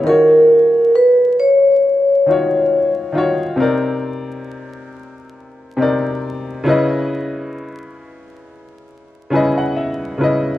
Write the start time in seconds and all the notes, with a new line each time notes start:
0.03 D#3 D#4 F4 A#4
0.07 F#4 C#5
0.96 B4
1.40 C#5
2.26 D#3 D#4 F4 F#4
2.32 C#5
3.12 D#3 D#4 F4
3.16 F#4 C#5
3.56 C3 C4 D#4
3.60 A#4 D5
5.77 C3 C4 D#4
5.81 A#4 D5
6.64 C#3 C#4 E4
6.68 B4 D#5
9.30 C#3 C#4 E4 B4 G#5
9.35 D#5
9.57 F#5
9.77 E5
10.18 C#3 C#4 E4 B4
10.23 D#5